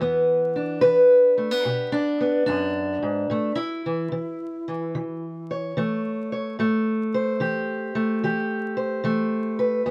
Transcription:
0.00 0.78 E2 medium
0.00 0.84 E3 soft
0.00 1.37 B3 soft
0.56 1.91 D4 soft
0.81 1.60 E3 medium
0.81 1.65 B4 medium
1.38 1.51 A3 soft
1.51 2.19 B3 soft
1.65 2.42 B2 medium
1.65 1.92 G4 medium
1.92 2.45 D4 medium
2.20 3.27 B3 soft
2.46 3.02 F#2 medium
2.46 3.56 D4 medium
3.03 3.29 G#2 medium
3.30 4.06 A2 medium
3.30 3.55 A3 soft
3.55 5.75 E4 medium
3.86 4.11 E3 soft
4.12 4.66 E3 medium
4.68 4.95 E3 soft
4.95 5.71 E3 medium
5.51 6.31 C#5 soft
5.77 6.53 E3 medium
5.77 6.58 A3 soft
6.32 6.56 C#5 soft
6.59 7.35 A2 medium
6.59 7.94 A3 medium
7.14 8.76 C5 medium
7.40 8.16 E3 medium
7.40 8.22 G4 medium
7.95 9.03 A3 medium
8.24 8.99 E3 medium
8.24 9.84 G4 medium
8.77 9.59 C5 medium
9.04 9.80 E3 medium
9.04 9.86 A3 medium
9.59 9.83 B4 medium
9.86 9.91 E2 medium
9.86 9.91 B3 soft

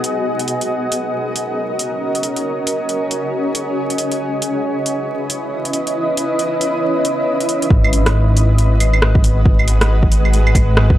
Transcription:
0.00 0.65 B3 medium
0.00 4.16 F#4 medium
0.00 0.65 G#4 medium
0.00 4.16 D#5 medium
0.00 open hi-hat medium
0.40 closed hi-hat soft
0.48 open hi-hat medium
0.61 closed hi-hat soft
0.69 7.66 C#4 medium
0.69 2.43 A#4 medium
0.92 open hi-hat medium
1.36 open hi-hat medium
1.79 open hi-hat medium
2.15 closed hi-hat soft
2.23 open hi-hat medium
2.37 closed hi-hat soft
2.45 4.18 G#4 medium
2.67 open hi-hat medium
2.89 closed hi-hat soft
3.11 open hi-hat medium
3.55 open hi-hat medium
3.90 closed hi-hat soft
3.98 open hi-hat medium
4.12 closed hi-hat soft
4.20 7.67 E4 medium
4.20 7.67 B4 medium
4.20 7.67 D#5 medium
4.42 open hi-hat medium
4.86 open hi-hat medium
5.30 open hi-hat medium
5.65 closed hi-hat soft
5.73 open hi-hat medium
5.87 closed hi-hat soft
6.17 open hi-hat medium
6.39 closed hi-hat soft
6.61 open hi-hat medium
7.05 open hi-hat medium
7.41 closed hi-hat soft
7.49 open hi-hat medium
7.62 closed hi-hat soft
7.70 10.98 G#1 medium
7.70 10.98 G#3 medium
7.70 10.98 F#4 medium
7.70 10.98 B4 medium
7.70 10.98 D#5 medium
7.70 kick loud
7.84 claves medium
7.93 open hi-hat medium
8.06 cross-stick loud
8.06 closed hi-hat soft
8.37 open hi-hat medium
8.58 closed hi-hat soft
8.80 open hi-hat medium
8.80 claves soft
8.93 claves medium
9.02 cross-stick loud
9.15 kick loud
9.24 open hi-hat medium
9.46 kick loud
9.59 claves medium
9.68 open hi-hat medium
9.81 cross-stick loud
9.81 closed hi-hat soft
10.03 kick medium
10.12 open hi-hat medium
10.25 claves soft
10.33 closed hi-hat soft
10.47 claves medium
10.55 kick loud
10.55 open hi-hat medium
10.55 claves soft
10.77 cross-stick loud
10.90 kick loud

